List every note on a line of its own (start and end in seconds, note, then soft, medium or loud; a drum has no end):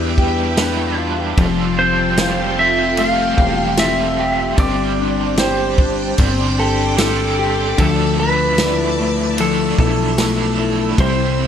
0.00 1.34 E2 loud
0.00 0.57 G3 medium
0.00 1.46 B3 medium
0.00 0.57 D4 medium
0.00 0.58 D4 medium
0.00 0.59 E4 medium
0.00 0.18 G4 medium
0.00 0.95 G4 medium
0.00 0.60 B4 medium
0.00 1.35 B4 medium
0.00 1.35 E5 medium
0.00 1.35 G5 medium
0.00 1.35 D6 medium
0.18 0.98 G4 medium
0.18 kick medium
0.57 1.38 G3 medium
0.57 1.46 D4 medium
0.57 1.38 D4 medium
0.57 1.39 E4 medium
0.57 snare loud
0.57 ride medium
0.57 tambourine medium
0.62 1.40 B4 medium
0.98 1.18 F4 medium
1.18 1.46 G4 medium
1.37 3.34 F1 loud
1.37 2.57 F3 medium
1.37 4.58 F3 medium
1.37 2.60 G3 medium
1.37 2.62 C4 loud
1.37 4.55 F4 medium
1.37 2.58 F4 loud
1.37 4.55 A4 medium
1.37 4.55 G5 medium
1.37 4.54 C6 medium
1.37 kick loud
1.37 ride medium
1.41 2.55 A4 medium
1.78 2.57 C4 medium
1.78 2.61 C5 medium
2.17 2.38 F4 medium
2.17 snare loud
2.17 ride medium
2.17 tambourine medium
2.38 3.37 G4 medium
2.57 3.78 C4 medium
2.57 2.99 F4 soft
2.57 2.97 A4 medium
2.57 3.00 E5 medium
2.62 2.97 C4 soft
2.96 3.76 G3 medium
2.96 4.58 A3 medium
2.96 3.78 C4 medium
2.96 3.79 F4 medium
2.96 3.79 F5 loud
2.96 ride medium
3.02 3.80 A4 medium
3.38 4.54 E1 medium
3.38 4.18 G4 medium
3.38 kick medium
3.77 4.55 G3 medium
3.77 4.58 C4 medium
3.77 4.59 F4 medium
3.77 4.61 E5 loud
3.77 snare loud
3.77 ride medium
3.77 tambourine medium
3.82 4.60 A4 medium
4.18 5.38 G4 medium
4.56 6.14 G1 loud
4.56 6.16 G3 medium
4.56 6.18 C4 medium
4.56 6.19 D4 medium
4.56 7.75 C5 medium
4.56 10.94 D5 medium
4.56 5.39 D5 loud
4.56 7.75 G5 medium
4.56 7.75 D6 medium
4.56 kick loud
4.56 ride medium
4.62 6.19 G4 loud
4.62 6.21 C5 medium
4.99 5.78 D4 medium
5.37 6.57 G4 medium
5.37 6.15 C5 medium
5.37 snare loud
5.37 ride medium
5.37 tambourine medium
5.78 6.98 D4 medium
5.78 kick loud
6.17 7.74 G1 loud
6.17 6.96 G3 medium
6.17 7.86 C4 medium
6.17 6.98 D4 medium
6.17 6.99 G4 medium
6.17 kick loud
6.17 ride medium
6.22 7.00 C5 medium
6.58 7.37 G4 medium
6.58 6.98 A4 medium
6.97 7.77 G3 medium
6.97 8.59 D4 medium
6.97 7.81 D4 medium
6.97 7.79 G4 medium
6.97 7.79 A4 medium
6.97 snare loud
6.97 ride medium
6.97 tambourine medium
7.02 7.80 C5 medium
7.39 7.86 G4 medium
7.76 9.74 D2 loud
7.76 9.37 D3 medium
7.76 9.38 F3 medium
7.76 9.36 A3 medium
7.76 8.19 A4 medium
7.76 10.96 E5 medium
7.76 10.96 A5 medium
7.76 11.47 E6 medium
7.76 kick loud
7.76 ride medium
7.82 9.38 D4 medium
7.82 9.41 E4 medium
7.82 9.41 A4 medium
8.19 8.98 A3 medium
8.19 9.40 B4 medium
8.58 9.78 E4 medium
8.58 snare loud
8.58 ride medium
8.58 tambourine medium
8.99 10.18 A3 medium
9.38 10.98 F3 medium
9.38 10.16 A3 medium
9.38 10.18 D4 medium
9.38 10.20 E4 medium
9.38 9.79 A4 loud
9.38 ride medium
9.43 10.20 A4 medium
9.78 10.94 B1 medium
9.78 10.58 E4 medium
9.78 11.02 A4 loud
9.78 kick loud
10.17 10.97 A3 medium
10.17 11.06 A3 medium
10.17 10.99 D4 medium
10.17 11.00 E4 medium
10.17 snare loud
10.17 ride medium
10.17 tambourine medium
10.22 11.00 A4 medium
10.59 11.47 E4 medium
10.97 11.47 C2 loud
10.97 11.47 C3 medium
10.97 11.47 E3 medium
10.97 11.47 G3 medium
10.97 11.47 C4 medium
10.97 11.47 E4 medium
10.97 11.47 C5 medium
10.97 11.47 C5 loud
10.97 11.47 C5 medium
10.97 11.47 E5 medium
10.97 11.47 G5 medium
10.97 kick loud
10.97 ride medium
11.39 11.47 C4 medium